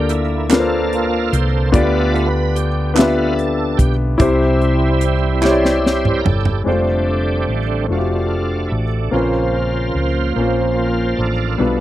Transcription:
Already playing: fingered electric bass D2, grand piano D3 A#3 D4 F4 A4 D5, tonewheel organ A#3 G4
0.09 tonewheel organ E4, closed hi-hat
0.49 grand piano A#3 D4 F4 A4 B4, tonewheel organ A#3 F4 A4, snare, clap, closed hi-hat
0.59 grand piano C5
0.93 closed hi-hat
1.33 fingered electric bass C2, tonewheel organ C5, closed hi-hat
1.72 fingered electric bass D2, grand piano D3 B3 D4 F4 G4 D5, tonewheel organ A3 B3 F4 B4 D5, kick, closed hi-hat
2.15 tonewheel organ B4, closed hi-hat
2.56 tonewheel organ G4, closed hi-hat
2.94 tonewheel organ A3 B3 F4 B4, grand piano B3 D4 F4 G4, clap, closed hi-hat
2.98 grand piano E5, snare
3.36 tonewheel organ A4, closed hi-hat
3.78 fingered electric bass B1, tonewheel organ G4, kick, closed hi-hat
4.17 fingered electric bass C2, grand piano C3 E4 G4, tonewheel organ G3 C4 E4, kick, closed hi-hat
4.22 grand piano C5
4.62 closed hi-hat
5.01 closed hi-hat
5.42 grand piano E4 G4 C#5, tonewheel organ E4 G4 C5, snare, clap
5.52 grand piano D5
5.65 snare
5.84 tonewheel organ G3 C4 E4, snare
6.05 mid tom
6.17 tonewheel organ A#4
6.24 fingered electric bass G1, tonewheel organ A4, floor tom
6.45 floor tom
6.64 fingered electric bass F1, tonewheel organ D3 G3 D4, grand piano G#3 C4 D4 F4
6.68 tonewheel organ A3 C4 G4, grand piano A3 C5
7.48 fingered electric bass A1
7.88 fingered electric bass F1, grand piano A3 C4 D4 F4 F#4, tonewheel organ A3 D4
7.92 tonewheel organ F4
7.98 grand piano G4
8.68 tonewheel organ E4
8.72 fingered electric bass A1, tonewheel organ D4
9.11 fingered electric bass A#1, grand piano A#2 A#3 C4 C#4 F4 B4, tonewheel organ C#3 F3 A#3 F4 C5
9.21 grand piano C5
9.95 fingered electric bass C#2
10.36 fingered electric bass A#1, grand piano A#3 C4 C#4 F4 C5, tonewheel organ F4 C5
11.16 fingered electric bass A1, tonewheel organ D4 F4 A4
11.57 fingered electric bass B1, grand piano B2 G3 B3 D4, tonewheel organ F3 A3 B3
11.61 grand piano F4 B4

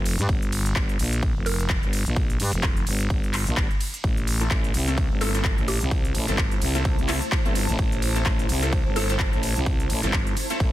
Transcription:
Already playing: fm bass F1
0.06 open hi-hat, ride
0.19 fm bass G2, closed hi-hat
0.29 fm bass G1, kick, ride
0.42 closed hi-hat
0.52 open hi-hat, ride
0.66 closed hi-hat
0.76 kick, clap, ride
0.89 closed hi-hat
0.99 fm bass A#1, open hi-hat, ride
1.13 closed hi-hat
1.23 kick, ride
1.36 fm bass F1
1.46 synth pluck A#4, open hi-hat, ride
1.59 closed hi-hat
1.70 kick, clap, ride
1.83 fm bass G1, closed hi-hat
1.93 open hi-hat, ride
2.06 fm bass A#1, closed hi-hat
2.16 kick, ride
2.30 closed hi-hat
2.40 fm bass G2, open hi-hat, ride
2.53 fm bass F1, closed hi-hat
2.63 kick, clap, ride
2.77 closed hi-hat
2.87 fm bass G1, open hi-hat, ride
3.00 closed hi-hat
3.10 kick, ride
3.24 closed hi-hat
3.34 clap, open hi-hat, ride
3.47 fm bass A#1, closed hi-hat
3.57 fm bass G1, kick, clap, ride
3.70 closed hi-hat
3.81 open hi-hat, ride
3.94 closed hi-hat
4.04 fm bass A1, ambient pad E4, kick, ride
4.14 ambient pad C5 A5, closed hi-hat
4.27 open hi-hat, ride
4.41 synth stab A3 C4 E4 A4, closed hi-hat
4.51 fm bass A1, kick, clap, ride
4.64 closed hi-hat
4.74 fm bass C2, open hi-hat, ride
4.88 synth stab A3 C4 E4 A4, closed hi-hat
4.98 kick, ride
5.11 fm bass G1
5.21 synth stab A3 C4 E4 A4, synth pluck A4, open hi-hat, ride
5.34 synth stab A3 C4 E4 A4, closed hi-hat
5.44 kick, clap, ride
5.58 fm bass A1, closed hi-hat
5.68 synth pluck G4, open hi-hat, ride
5.81 fm bass C2, closed hi-hat
5.91 kick, ride
6.05 closed hi-hat
6.15 fm bass A1, open hi-hat, ride
6.28 fm bass G1, synth stab A3 C4 E4 A4, closed hi-hat
6.38 kick, clap, ride
6.51 closed hi-hat
6.62 fm bass C2, open hi-hat, ride
6.75 synth stab A3 C4 E4 A4, closed hi-hat
6.85 kick, ride
6.98 fm bass C2, closed hi-hat
7.09 synth stab A3 C4 E4 A4, clap, open hi-hat, ride
7.22 closed hi-hat
7.32 kick, clap, ride
7.45 fm bass G1, synth stab A3 C4 E4 A4, closed hi-hat
7.55 open hi-hat, ride
7.69 fm bass A1, closed hi-hat
7.79 fm bass A1, kick, ride
7.92 closed hi-hat
8.02 open hi-hat, ride
8.16 synth stab A3 C4 E4 A4, closed hi-hat
8.26 kick, clap, ride
8.39 closed hi-hat
8.49 fm bass C2, open hi-hat, ride
8.62 synth stab A3 C4 E4 A4, closed hi-hat
8.73 kick, ride
8.86 fm bass G1
8.96 synth stab A3 C4 E4 A4, synth pluck A4, open hi-hat, ride
9.09 synth stab A3 C4 E4 A4, closed hi-hat
9.19 kick, clap, ride
9.33 fm bass A1, closed hi-hat
9.43 open hi-hat, ride
9.56 fm bass C2, closed hi-hat
9.66 kick, ride
9.80 closed hi-hat
9.90 fm bass A1, open hi-hat, ride
10.03 fm bass G1, synth stab A3 C4 E4 A4, closed hi-hat
10.13 kick, clap, ride
10.27 closed hi-hat
10.37 open hi-hat, ride
10.50 synth stab A3 C4 E4 A4, closed hi-hat
10.60 fm bass A1, kick, ride

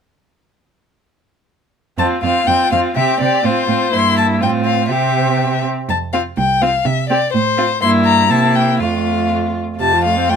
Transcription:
1.98 cello F2, viola C4, violin F4 A5
2.23 cello F2, viola C4, violin F4 F5
2.47 cello F2, viola C4, violin F4 G5
2.72 cello F2, viola C4, violin F4 F5
2.96 cello C3, viola C4, violin G4 E5
3.20 cello C3, viola C4, violin G4 D5
3.44 cello A2, viola C4, violin F4 C5
3.68 cello A2, viola C4, violin F4
3.92 cello G2, viola A#3, violin E4 C6
4.17 violin A5
4.41 cello A2, viola C4, violin F4 G5
4.65 violin F5
4.89 cello C3, viola C4, violin G4 E5
5.88 cello F2, violin A5
6.13 viola C4, violin F4 F5
6.37 cello C2, violin G5
6.62 viola C4, violin F4 F5
6.85 cello C3, violin E5
7.10 viola C4, violin G4 D5
7.33 cello A2, violin C5
7.58 viola C4, violin F4
7.82 cello G2, viola A#3, violin E4 C6
8.05 violin A#5
8.30 cello C3, viola A#3, violin E4 A5
8.55 violin G5
8.80 cello F2, viola A3, violin F4 F5
9.80 cello F2, viola C3, violin F4 A5
9.93 viola F3
10.05 viola A3, violin F5
10.16 viola C4
10.29 viola A3, violin G5

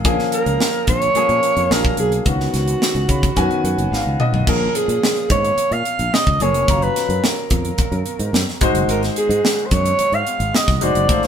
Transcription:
0.04 fretless electric bass A#1, grand piano F3 A#3 C#4 G#4, kick, closed hi-hat
0.19 snare
0.32 alto saxophone A#4, closed hi-hat
0.46 fretless electric bass C#2, closed hi-hat
0.60 snare
0.87 fretless electric bass A#1, alto saxophone C#5, kick, closed hi-hat
1.02 closed hi-hat
1.15 grand piano F3 A#3 C#4 G#4, muted fretless electric bass stroke, closed hi-hat
1.29 fretless electric bass A#2, closed hi-hat
1.43 closed hi-hat
1.57 fretless electric bass F2, closed hi-hat
1.70 fretless electric bass A#1, grand piano F#3 A#3 D4 G#4, alto saxophone A#4, snare
1.85 kick
1.97 fretless electric bass B1, alto saxophone G#4, closed hi-hat
2.12 closed hi-hat
2.20 alto saxophone G#4
2.25 fretless electric bass C#2, grand piano D#3 B3 C#4 F#4, alto saxophone F#4, kick, closed hi-hat
2.40 snare
2.54 fretless electric bass C#2, snare, closed hi-hat
2.68 closed hi-hat
2.82 snare
2.95 fretless electric bass C#2, closed hi-hat
3.09 fretless electric bass C#3, grand piano B5, kick, closed hi-hat
3.23 kick, closed hi-hat
3.36 fretless electric bass F#2, grand piano D#3 B3 C#4 F#4 G#5, kick, closed hi-hat
3.51 closed hi-hat
3.64 fretless electric bass F#2, grand piano F#5, closed hi-hat
3.78 fretless electric bass F#1, closed hi-hat
3.92 fretless electric bass G#1, grand piano F5, snare
4.06 fretless electric bass C#2
4.20 grand piano D#5, mid tom
4.33 fretless electric bass B1, floor tom
4.47 fretless electric bass A#1, grand piano F3 A#3 C#4 G#4, alto saxophone A#4, kick, crash
4.75 alto saxophone G#4, closed hi-hat, high conga
4.88 fretless electric bass A#2, closed hi-hat
5.03 snare, muted conga
5.17 closed hi-hat, muted conga
5.30 fretless electric bass G#2, alto saxophone C#5, kick, closed hi-hat, high conga, low conga
5.45 closed hi-hat
5.57 muted fretless electric bass stroke, closed hi-hat, muted conga
5.71 fretless electric bass A#2, alto saxophone F5, closed hi-hat, muted conga
5.85 closed hi-hat, high conga
5.99 fretless electric bass A#1, closed hi-hat
6.13 alto saxophone D#5, snare, muted conga, high conga
6.27 fretless electric bass C#2, kick, muted conga, low conga
6.40 fretless electric bass F#1, grand piano F3 A#3 C#4 G#4, alto saxophone C#5, closed hi-hat, low conga
6.54 fretless electric bass F1, closed hi-hat
6.68 fretless electric bass F#1, grand piano F#3 C#4 F4 A#5, kick, closed hi-hat, muted conga
6.82 alto saxophone B4, closed hi-hat
6.96 snare, closed hi-hat, high conga
7.09 fretless electric bass F#2, closed hi-hat
7.24 alto saxophone A#4, snare
7.50 fretless electric bass F2, kick, closed hi-hat, high conga, low conga
7.65 closed hi-hat
7.78 muted fretless electric bass stroke, kick, closed hi-hat, muted conga
7.92 fretless electric bass F#2, closed hi-hat, muted conga
8.06 closed hi-hat, high conga
8.19 fretless electric bass G#2, closed hi-hat
8.33 fretless electric bass F#2, snare, muted conga, high conga
8.48 snare, muted conga, low conga
8.61 fretless electric bass G#1, grand piano G#3 D#4 F#4 C5, kick, closed hi-hat, low conga
8.74 fretless electric bass F#1, closed hi-hat
8.88 fretless electric bass G#1, alto saxophone A#4, closed hi-hat, muted conga
9.03 snare, closed hi-hat
9.16 alto saxophone G#4, closed hi-hat, high conga
9.29 fretless electric bass G#2, closed hi-hat
9.45 snare
9.66 alto saxophone C5
9.71 fretless electric bass F#2, alto saxophone C#5, kick, closed hi-hat, high conga, low conga
9.86 closed hi-hat
9.99 muted fretless electric bass stroke, closed hi-hat, muted conga
10.12 fretless electric bass G#2, alto saxophone F5, closed hi-hat, muted conga
10.27 closed hi-hat, high conga
10.40 fretless electric bass G#1, closed hi-hat
10.54 alto saxophone D#5, snare, muted conga, high conga
10.68 fretless electric bass C2, kick, snare, muted conga, low conga
10.76 alto saxophone D#5
10.81 fretless electric bass F1, grand piano G#3 D#4 F#4 C5, alto saxophone D5, closed hi-hat, low conga
10.95 fretless electric bass F#1, closed hi-hat
11.09 fretless electric bass A1, grand piano A3 D#4 F4 C5, kick, closed hi-hat
11.23 snare, closed hi-hat

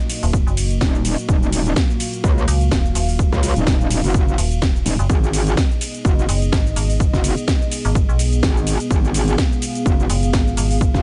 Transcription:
Already playing: analog synth pad A#3 F#4 D#5
0.10 open hi-hat, ride, shaker
0.23 fm bass D#1, open hi-hat, shaker
0.33 kick, shaker
0.47 fm bass F#1, shaker
0.57 open hi-hat, ride, shaker
0.71 closed hi-hat, shaker
0.81 wobble bass D#1, kick, snare, closed hi-hat, shaker
0.95 shaker
1.05 open hi-hat, ride, shaker
1.18 closed hi-hat, shaker
1.29 wobble bass D#1, analog synth pad F5, kick, closed hi-hat, shaker
1.43 shaker
1.52 open hi-hat, ride, shaker
1.66 closed hi-hat, shaker
1.76 kick, snare, closed hi-hat, shaker
1.90 shaker
2.00 open hi-hat, ride, shaker
2.13 closed hi-hat, shaker
2.24 wobble bass C#2, kick, closed hi-hat, shaker
2.38 shaker
2.48 fm bass C#2, open hi-hat, ride, shaker
2.61 closed hi-hat, shaker
2.71 fm bass D#1, kick, snare, closed hi-hat, shaker
2.86 shaker
2.95 fm bass D#1, open hi-hat, ride, shaker
3.09 open hi-hat, shaker
3.19 kick, closed hi-hat, shaker
3.33 wobble bass C#2, kick, snare, shaker
3.43 open hi-hat, ride, shaker
3.56 wobble bass D#1, closed hi-hat, shaker
3.67 kick, snare, closed hi-hat, shaker
3.81 shaker
3.90 open hi-hat, ride, shaker
4.04 wobble bass F#1, open hi-hat, shaker
4.14 kick, closed hi-hat, shaker
4.28 shaker
4.38 fm bass D#1, open hi-hat, ride, shaker
4.52 closed hi-hat, shaker
4.62 kick, snare, closed hi-hat, shaker
4.76 shaker
4.86 wobble bass D#1, open hi-hat, ride, shaker
4.99 fm bass F#1, closed hi-hat, shaker
5.09 wobble bass G#1, analog synth pad B3 G#4 D#5, kick, closed hi-hat, shaker
5.24 shaker
5.33 open hi-hat, ride, shaker
5.47 closed hi-hat, shaker
5.57 kick, snare, closed hi-hat, shaker
5.71 shaker
5.81 open hi-hat, ride, shaker
5.95 closed hi-hat, shaker
6.05 wobble bass F#1, kick, closed hi-hat, shaker
6.19 shaker
6.29 fm bass F#1, open hi-hat, ride, shaker
6.42 closed hi-hat, shaker
6.52 kick, snare, closed hi-hat, shaker
6.67 shaker
6.76 fm bass G#1, open hi-hat, ride, shaker
6.90 open hi-hat, shaker
7.00 kick, closed hi-hat, shaker
7.13 wobble bass F#1, kick, snare, shaker
7.24 open hi-hat, ride, shaker
7.37 closed hi-hat, shaker
7.48 kick, snare, closed hi-hat, shaker
7.62 shaker
7.71 open hi-hat, ride, shaker
7.85 fm bass G#1, open hi-hat, shaker
7.95 kick, closed hi-hat, shaker
8.09 fm bass B1, shaker
8.19 open hi-hat, ride, shaker
8.33 closed hi-hat, shaker
8.43 wobble bass G#1, kick, snare, closed hi-hat, shaker
8.57 shaker
8.67 open hi-hat, ride, shaker
8.80 closed hi-hat, shaker
8.90 wobble bass G#1, analog synth pad F5, kick, closed hi-hat, shaker
9.05 shaker
9.14 open hi-hat, ride, shaker
9.28 closed hi-hat, shaker
9.38 kick, snare, closed hi-hat, shaker
9.52 shaker
9.62 open hi-hat, ride, shaker
9.75 closed hi-hat, shaker
9.86 wobble bass F#1, kick, closed hi-hat, shaker
10.00 shaker
10.10 fm bass F#1, open hi-hat, ride, shaker
10.23 closed hi-hat, shaker
10.33 fm bass G#1, kick, snare, closed hi-hat, shaker
10.47 shaker
10.57 fm bass G#1, open hi-hat, ride, shaker
10.71 open hi-hat, shaker
10.81 kick, closed hi-hat, shaker
10.94 wobble bass F#1, kick, snare, shaker

